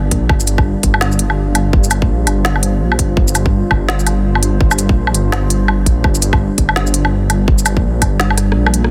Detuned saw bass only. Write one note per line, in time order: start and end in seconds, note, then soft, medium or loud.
0.00 0.11 G1 loud
0.11 0.28 A#1 medium
0.30 0.75 G1 loud
0.83 1.72 G1 medium
1.73 2.03 G1 loud
2.02 2.26 A#1 medium
2.27 2.82 G1 medium
2.81 2.98 A#1 medium
2.99 3.16 G1 medium
3.17 3.62 G1 loud
3.71 4.60 G1 medium
4.61 4.91 G1 loud
4.89 5.14 A#1 medium
5.15 5.86 G1 medium
5.86 6.03 A#1 medium
6.04 6.50 G1 loud
6.58 7.47 G1 loud
7.48 7.78 G1 loud
7.77 8.01 A#1 medium
8.02 8.55 G1 medium
8.56 8.73 A#1 loud
8.74 8.91 A#1 medium